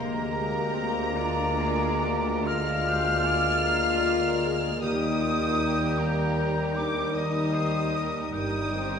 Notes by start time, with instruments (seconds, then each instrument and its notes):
Already playing: double bass section D2, cello section D2, bassoon G#3, viola section A#3 G4, french horn section A#3, violin section A#4 A#5, oboe A#4, clarinet A#4, flute A#5
0.36 viola section G#3
0.75 viola section C4
1.14 viola section D4 F4, violin section A#4, oboe D5
1.59 violin section G#4
2.04 violin section G4
2.46 viola section A#3 D4, violin section F4 D5 F6, french horn section F4, oboe A#4, flute F6
2.87 violin section G4, oboe C5
3.26 violin section G#4, oboe D5
3.65 viola section A#3 D4, violin section A#4 D5, oboe F5
4.04 viola section F4
4.45 viola section G#4
4.81 double bass section D#2, cello section D#2, timpani D#3, bassoon G3, french horn section D#4, viola section G4, violin section G4 A#4 D#6, clarinet A#4, oboe G5, flute D#6
5.20 viola section F4
5.59 viola section D#4
5.98 viola section G3, french horn section A#3, flute A#5, violin section A#5
6.76 french horn section D4, flute D6, violin section D6
7.15 french horn section D#4, violin section G4 A#4 D#6, oboe D#5, flute D#6
7.54 oboe C5
7.94 oboe A#4
8.31 double bass section G1, cello section G2, viola section G3 D#4, french horn section D#4, violin section G4 A#4 D#6, oboe G5, flute D#6
8.74 viola section C4